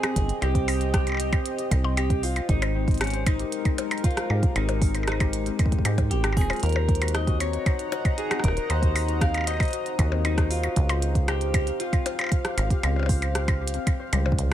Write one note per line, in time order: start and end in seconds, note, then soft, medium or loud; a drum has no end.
0.00 3.70 C4 medium
0.00 0.16 C4 medium
0.00 0.74 F4 loud
0.00 0.68 G4 medium
0.00 0.42 G#4 loud
0.00 0.42 C5 loud
0.00 4.14 D#5 medium
0.00 3.13 G5 medium
0.00 cross-stick loud
0.00 closed hi-hat soft
0.00 percussion blips medium
0.16 0.32 G1 medium
0.16 0.93 C4 medium
0.16 kick loud
0.16 closed hi-hat loud
0.29 closed hi-hat soft
0.42 1.37 C2 loud
0.42 0.92 G4 loud
0.42 1.32 C5 loud
0.42 closed hi-hat medium
0.42 percussion blips medium
0.55 kick loud
0.55 closed hi-hat soft
0.68 1.58 G4 medium
0.68 open hi-hat medium
0.68 percussion blips medium
0.81 closed hi-hat soft
0.93 1.06 C4 medium
0.93 1.67 G4 medium
0.93 kick loud
0.93 cross-stick loud
0.93 closed hi-hat medium
1.07 1.84 C4 medium
1.07 closed hi-hat soft
1.07 percussion blips soft
1.09 percussion blips soft
1.12 percussion blips soft
1.15 percussion blips soft
1.17 closed hi-hat loud
1.17 percussion blips soft
1.33 2.23 C5 loud
1.33 kick loud
1.33 closed hi-hat soft
1.33 percussion blips medium
1.46 closed hi-hat medium
1.58 2.49 G4 medium
1.58 closed hi-hat soft
1.71 2.41 C2 loud
1.71 kick loud
1.71 closed hi-hat medium
1.71 percussion blips medium
1.84 1.97 C4 medium
1.84 percussion blips medium
1.97 2.75 C4 medium
1.97 2.21 G4 loud
1.97 closed hi-hat medium
1.97 percussion blips medium
2.10 kick loud
2.10 closed hi-hat soft
2.23 2.49 F4 loud
2.23 3.13 C5 loud
2.23 open hi-hat medium
2.36 closed hi-hat soft
2.36 percussion blips medium
2.49 3.44 G#1 loud
2.49 6.63 G#3 medium
2.49 2.97 D#4 loud
2.49 3.39 G4 medium
2.49 kick loud
2.49 closed hi-hat medium
2.62 closed hi-hat soft
2.62 percussion blips medium
2.75 2.88 C4 medium
2.88 3.65 C4 medium
2.88 kick loud
2.88 closed hi-hat soft
2.91 7.46 A#4 medium
2.91 closed hi-hat soft
2.94 closed hi-hat soft
2.98 3.25 C#4 medium
2.98 cross-stick loud
2.98 closed hi-hat soft
3.01 closed hi-hat medium
3.01 percussion blips medium
3.04 closed hi-hat soft
3.07 closed hi-hat soft
3.10 closed hi-hat soft
3.14 4.04 C5 loud
3.14 closed hi-hat soft
3.26 4.04 D#4 loud
3.26 kick loud
3.26 closed hi-hat loud
3.26 percussion blips medium
3.39 4.30 G4 medium
3.39 closed hi-hat soft
3.52 closed hi-hat medium
3.65 3.78 C4 medium
3.65 kick loud
3.65 closed hi-hat soft
3.65 percussion blips soft
3.78 4.55 C4 medium
3.78 closed hi-hat medium
3.78 percussion blips medium
3.91 closed hi-hat soft
3.91 percussion blips medium
3.98 closed hi-hat soft
4.04 4.52 F4 medium
4.04 4.94 C5 loud
4.04 kick loud
4.04 closed hi-hat medium
4.11 closed hi-hat soft
4.17 cross-stick loud
4.17 closed hi-hat soft
4.30 4.46 G#2 medium
4.30 5.20 G4 medium
4.30 percussion blips medium
4.43 kick loud
4.43 closed hi-hat soft
4.56 5.51 G#1 loud
4.56 4.68 C4 medium
4.56 5.06 D#4 medium
4.56 closed hi-hat medium
4.56 percussion blips medium
4.69 5.46 C4 medium
4.69 closed hi-hat soft
4.69 percussion blips medium
4.82 kick loud
4.82 open hi-hat medium
4.95 6.75 C5 loud
4.95 closed hi-hat soft
4.95 percussion blips soft
5.03 percussion blips soft
5.07 5.81 D#4 medium
5.07 cross-stick loud
5.07 closed hi-hat medium
5.12 percussion blips soft
5.20 5.85 G4 medium
5.20 kick loud
5.20 closed hi-hat soft
5.20 percussion blips medium
5.33 closed hi-hat medium
5.46 5.59 C4 medium
5.46 closed hi-hat soft
5.59 6.11 C4 medium
5.59 kick loud
5.59 closed hi-hat medium
5.59 percussion blips medium
5.66 kick loud
5.72 kick medium
5.72 closed hi-hat soft
5.79 kick medium
5.85 6.12 G#2 medium
5.85 7.08 G4 loud
5.85 closed hi-hat medium
5.85 percussion blips medium
5.98 kick loud
5.98 closed hi-hat soft
5.98 percussion blips medium
6.11 6.38 G#1 loud
6.11 6.36 C4 medium
6.11 6.36 G4 medium
6.11 closed hi-hat medium
6.24 cross-stick loud
6.24 closed hi-hat soft
6.24 percussion blips soft
6.33 percussion blips soft
6.37 6.53 D#1 loud
6.37 7.40 C4 loud
6.37 6.62 G#4 medium
6.37 kick loud
6.37 open hi-hat medium
6.41 percussion blips soft
6.50 7.08 F4 loud
6.50 closed hi-hat soft
6.50 percussion blips medium
6.53 closed hi-hat soft
6.56 closed hi-hat soft
6.60 7.58 D#2 loud
6.60 12.42 D#4 medium
6.60 7.14 A#4 loud
6.60 closed hi-hat soft
6.63 closed hi-hat medium
6.66 closed hi-hat soft
6.69 closed hi-hat soft
6.73 7.66 C5 loud
6.73 closed hi-hat soft
6.73 percussion blips medium
6.73 percussion blips soft
6.88 kick loud
6.88 closed hi-hat soft
6.95 12.42 D#5 medium
6.95 closed hi-hat soft
7.01 7.27 F#4 medium
7.01 12.12 A#5 medium
7.01 closed hi-hat medium
7.01 percussion blips medium
7.08 closed hi-hat medium
7.14 7.40 D#5 loud
7.14 cross-stick loud
7.14 closed hi-hat medium
7.24 7.92 F#4 medium
7.24 10.76 F#5 medium
7.24 kick loud
7.28 closed hi-hat soft
7.40 8.30 C4 medium
7.40 8.14 C#5 loud
7.40 closed hi-hat medium
7.40 percussion blips medium
7.53 closed hi-hat soft
7.66 8.56 C5 loud
7.66 kick loud
7.66 closed hi-hat medium
7.66 percussion blips medium
7.79 closed hi-hat soft
7.92 8.17 F#4 medium
7.92 closed hi-hat medium
7.92 percussion blips medium
8.05 kick loud
8.05 closed hi-hat soft
8.05 percussion blips medium
8.18 8.82 F#4 medium
8.18 8.43 G#4 loud
8.18 closed hi-hat medium
8.31 9.21 C4 medium
8.31 cross-stick loud
8.31 closed hi-hat soft
8.31 percussion blips medium
8.39 cross-stick medium
8.44 8.60 D#1 medium
8.44 8.70 A#4 loud
8.44 kick loud
8.44 closed hi-hat medium
8.48 cross-stick medium
8.57 9.47 C5 loud
8.57 closed hi-hat soft
8.70 9.65 D#2 loud
8.70 9.21 C5 loud
8.70 closed hi-hat medium
8.70 percussion blips medium
8.82 9.08 F#4 medium
8.82 kick loud
8.82 closed hi-hat soft
8.96 open hi-hat medium
8.96 percussion blips medium
9.08 9.73 F#4 medium
9.08 closed hi-hat soft
9.21 10.11 C4 medium
9.21 9.45 F5 loud
9.21 kick loud
9.21 cross-stick loud
9.21 closed hi-hat medium
9.34 closed hi-hat soft
9.34 percussion blips medium
9.38 percussion blips soft
9.41 percussion blips soft
9.44 10.37 C5 loud
9.44 10.21 D#5 loud
9.44 closed hi-hat medium
9.44 percussion blips soft
9.47 percussion blips soft
9.50 percussion blips soft
9.54 percussion blips soft
9.57 kick loud
9.57 closed hi-hat soft
9.57 percussion blips soft
9.60 closed hi-hat soft
9.60 percussion blips medium
9.65 closed hi-hat soft
9.68 closed hi-hat soft
9.71 9.98 F#4 medium
9.71 closed hi-hat soft
9.73 closed hi-hat medium
9.86 closed hi-hat soft
9.99 10.68 D#2 loud
9.99 10.63 F#4 medium
9.99 kick loud
9.99 closed hi-hat medium
9.99 percussion blips medium
10.12 11.02 C4 medium
10.12 percussion blips medium
10.25 10.50 D#4 medium
10.25 closed hi-hat medium
10.25 percussion blips medium
10.38 11.28 C5 loud
10.38 kick loud
10.38 cross-stick loud
10.38 closed hi-hat soft
10.51 11.31 F4 loud
10.51 open hi-hat medium
10.63 10.95 F#4 medium
10.63 closed hi-hat soft
10.63 percussion blips medium
10.76 11.72 C#2 loud
10.76 kick loud
10.76 closed hi-hat medium
10.89 11.53 G4 medium
10.89 14.53 F5 medium
10.89 closed hi-hat soft
10.89 percussion blips medium
11.02 11.92 C4 medium
11.02 closed hi-hat medium
11.15 kick loud
11.15 closed hi-hat soft
11.28 11.82 G4 medium
11.28 12.18 C5 loud
11.28 cross-stick loud
11.28 closed hi-hat medium
11.28 percussion blips medium
11.41 closed hi-hat soft
11.54 11.79 G4 medium
11.54 kick loud
11.54 closed hi-hat medium
11.54 percussion blips medium
11.67 closed hi-hat soft
11.80 14.35 F4 medium
11.80 12.44 G4 medium
11.80 closed hi-hat medium
11.93 12.83 C4 medium
11.93 kick loud
11.93 closed hi-hat soft
11.93 percussion blips medium
12.06 closed hi-hat medium
12.06 percussion blips medium
12.19 13.09 C5 loud
12.19 closed hi-hat soft
12.19 percussion blips medium
12.21 percussion blips medium
12.24 percussion blips medium
12.27 percussion blips soft
12.29 kick loud
12.29 closed hi-hat medium
12.29 percussion blips soft
12.45 12.70 G4 medium
12.45 cross-stick loud
12.45 closed hi-hat soft
12.57 12.73 G#1 medium
12.57 closed hi-hat loud
12.57 percussion blips medium
12.70 13.35 G4 medium
12.70 kick loud
12.70 closed hi-hat soft
12.83 13.79 C#2 loud
12.83 13.73 C4 medium
12.83 closed hi-hat medium
12.83 percussion blips medium
12.96 percussion blips soft
12.99 percussion blips medium
13.03 percussion blips medium
13.06 13.99 C5 loud
13.06 kick loud
13.06 open hi-hat medium
13.06 percussion blips medium
13.22 closed hi-hat soft
13.22 percussion blips medium
13.35 13.60 G4 medium
13.35 cross-stick loud
13.35 closed hi-hat medium
13.48 kick loud
13.48 closed hi-hat soft
13.48 percussion blips medium
13.61 14.53 G4 medium
13.68 closed hi-hat loud
13.74 14.51 C4 medium
13.74 closed hi-hat soft
13.87 kick loud
13.87 closed hi-hat medium
13.87 percussion blips medium
14.00 14.53 C5 loud
14.13 14.38 C#2 loud
14.13 14.53 G3 loud
14.13 closed hi-hat medium
14.13 percussion blips medium
14.26 14.53 C3 medium
14.26 percussion blips medium
14.32 kick loud
14.39 14.53 C#2 medium
14.39 closed hi-hat medium